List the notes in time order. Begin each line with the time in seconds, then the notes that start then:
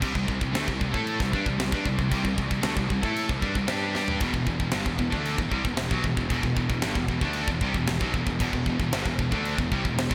0.02 C2 C3 G3, kick, crash
0.15 C2 C3 G3, kick
0.27 C2 C3 G3, kick
0.41 C2 C3 G3, kick
0.53 D2 D3 A3, snare, crash
0.67 C2 C3 G3, kick
0.80 C2 C3 G3, kick
0.94 A2 A3 E4 A4, kick
1.07 crash
1.20 C2 C3 G3, kick, snare
1.33 G2 G3 D4, kick
1.46 C2 C3 G3, kick
1.58 C2 C3 G3, snare, crash
1.72 G2 G3 D4, kick
1.86 C2 C3 G3, kick
1.98 C2 C3 G3, kick
2.11 C2 C3 G3, kick, crash
2.23 C2 C3 G3, kick
2.28 C3
2.37 C2 C3 G3, kick
2.49 C2 C3 G3, kick
2.61 D2 D3 A3, snare, crash
2.76 C2 C3 G3, kick
2.89 C2 C3 G3, kick
3.02 A2 A3 E4 A4, kick
3.16 crash
3.29 C2 C3 G3, kick
3.40 G2 G3 D4, kick
3.55 C2 C3 G3, kick
3.68 G2 G3 D4 G4, snare, crash
3.94 G2 G3 D4 G4, snare
4.08 floor tom
4.20 E1 E2 B2, kick, crash
4.34 E1 E2 B2, kick
4.47 E1 E2 B2, kick
4.60 E1 E2 B2, kick
4.71 G1 G2 D3, snare, crash
4.86 E1 E2 B2, kick
4.99 E1 E2 B2, kick
5.12 D2 D3 A3 D4, kick
5.26 crash
5.38 E1 E2 B2, kick
5.48 C2 C3 G3, kick
5.53 C3 G3
5.65 E1 E2 B2, kick
5.74 E2 B2, snare, crash
5.79 E1 E2 B2
5.89 B1 B2 F#3, kick
5.93 B2 F#3
6.04 E1 E2 B2, kick
6.16 E1 E2, kick
6.20 E2 B2
6.29 E1 E2 B2, kick, crash
6.34 B2
6.42 E1 E2 B2, kick
6.47 E2 B2
6.55 E1 E2 B2, kick
6.60 E2 B2
6.70 E1 E2, kick
6.74 B2
6.82 G1 G2 D3, snare, crash
6.87 G2 D3
6.95 E1 E2 B2, kick
7.08 E1 E2 B2, kick
7.21 D2 D3 A3, kick
7.26 D4
7.33 crash
7.47 E1 E2 B2, kick
7.61 C2 C3 G3, kick
7.74 E1 E2 B2, kick
7.87 E1 E2 B2, snare, crash
7.91 E2 B2
8.01 B1 B2 F#3, kick
8.14 E1 E2 B2, kick
8.27 E1 E2 B2, kick
8.40 E1 E2 B2, kick, crash
8.53 E1 E2 B2, kick
8.66 E1 E2 B2, kick
8.79 E1 E2 B2, kick
8.91 G1 G2 D3, snare, crash
9.05 E1 E2 B2, kick
9.19 E1 E2 B2, kick
9.32 D2 D3 A3 D4, kick
9.45 crash
9.57 E1 E2 B2, kick
9.72 C2 C3 G3, kick
9.83 E1 E2 B2, kick
9.96 E1 E2 B2, snare, crash
10.09 B1 B2 F#3, kick